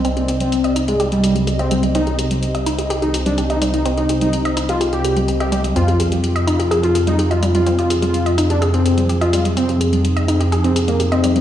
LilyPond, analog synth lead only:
\new Staff \with { instrumentName = "Analog synth lead" } { \time 4/4 \key c \minor \tempo 4 = 126 r16 c'16 r16 c'8 r8 aes16 r16 g8 r8 c'8 r16 | ees'8 r4. r16 ees'16 r16 d'16 r16 ees'16 r16 ees'16 | r16 ees'16 r16 ees'8 r8 f'16 r16 g'8 r8 g'8 r16 | f'8 r4. r16 f'16 r16 ees'16 r16 f'16 r16 f'16 |
r16 f'16 r16 f'8 r8 d'16 r16 c'8 r8 f'8 r16 | c'8 r4. r16 c'16 r16 bes16 r16 c'16 r16 c'16 | }